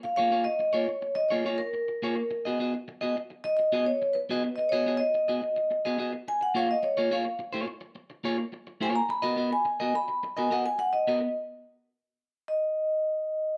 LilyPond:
<<
  \new Staff \with { instrumentName = "Vibraphone" } { \time 4/4 \key gis \dorian \tempo 4 = 106 eis''16 eis''8 dis''8 cis''8. dis''16 cis''8 ais'4~ ais'16~ | ais'16 r4. r16 dis''16 dis''8 cis''8 b'8. | dis''16 cis''8 dis''4. r8. gis''16 fis''16 eis''16 dis''16 | cis''8 eis''8 r2 r8 gis''16 ais''16 |
b''8. gis''8. b''8. gis''16 fis''16 gis''16 fis''16 dis''8. | r2 dis''2 | }
  \new Staff \with { instrumentName = "Clean electric guitar" } { \time 4/4 \key gis \dorian r16 <ais eis' gis' cis''>16 <ais eis' gis' cis''>16 r8 <ais eis' gis' cis''>16 r8. <ais eis' gis' cis''>16 <ais eis' gis' cis''>16 r8. <ais eis' gis' cis''>16 r16 | r16 <b fis' gis' dis''>16 <b fis' gis' dis''>16 r8 <b fis' gis' dis''>16 r4 <b fis' gis' dis''>16 r8. <b fis' gis' dis''>16 r16 | r16 <b fis' gis' dis''>16 <b fis' gis' dis''>16 r8 <b fis' gis' dis''>16 r8. <b fis' gis' dis''>16 <b fis' gis' dis''>16 r8. <ais eis' gis' cis''>16 r16 | r16 <ais eis' gis' cis''>16 <ais eis' gis' cis''>16 r8 <ais eis' gis' cis''>16 r4 <ais eis' gis' cis''>16 r8. <ais eis' gis' cis''>16 r16 |
r16 <b fis' ais' dis''>16 <b fis' ais' dis''>16 r8 <b fis' ais' dis''>16 r8. <b fis' ais' dis''>16 <b fis' ais' dis''>16 r8. <b fis' ais' dis''>16 r16 | r1 | }
>>